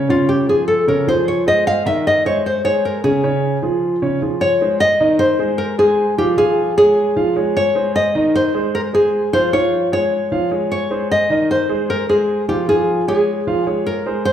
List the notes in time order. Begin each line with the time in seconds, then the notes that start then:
0.09 C#3 C#4 F4 C#5
0.29 G4
0.48 F3 F4 G#4
0.68 A4
0.87 C#3 C#4 A#4 C#5
1.07 F3 F4 G#4 C5
1.28 C#5
1.46 G#3 G#4 C5 D#5
1.67 F5
1.86 D#3 D#4 D#5 E5
2.07 D#5
2.25 G#3 G#4 C5 C#5
2.46 C5
2.64 G#3 G#4 C5 C#5
2.85 A#4
3.04 C#3 C#4 G#4 C#5
3.23 C#3 C#4 C#5
3.62 F3 F4 G#4
4.02 C#3 C#4 C#5
4.22 F3 F4 G#4
4.41 C#5
4.61 G#3 G#4 C5
4.80 D#5
5.00 D#3 D#4 D#5
5.19 C5
5.39 G#3 G#4 C5
5.58 A#4
5.78 G#3 G#4 C5
6.18 F3 F4 G4 F5
6.37 F3 F4 G#4 F5
6.77 G#3 G#4 C#5
7.16 F3 F4 F5
7.36 G#3 G#4 C#5
7.57 C#5
7.75 G#3 G#4 C5
7.96 D#5
8.15 D#3 D#4 D#5
8.35 C5
8.54 G#3 G#4 C5
8.75 A#4
8.93 G#3 G#4 C5
9.33 F3 F4 C5 F5
9.53 F3 F4 C#5 F5
9.92 G#3 G#4 C#5
10.32 F3 F4 F5
10.51 G#3 G#4 C#5
10.72 C#5
10.91 G#3 G#4 C5
11.11 D#5
11.30 D#3 D#4 D#5
11.51 C5
11.69 G#3 G#4 C5
11.90 A#4
12.09 G#3 G#4 C5
12.48 F3 F4 G4 F5
12.68 F3 F4 G#4 F5
13.08 G#3 G#4 C#5
13.47 F3 F4 F5
13.63 G#3 G4 G#4 C#5
13.86 A#4
14.06 G#3 G#4 C5
14.25 C5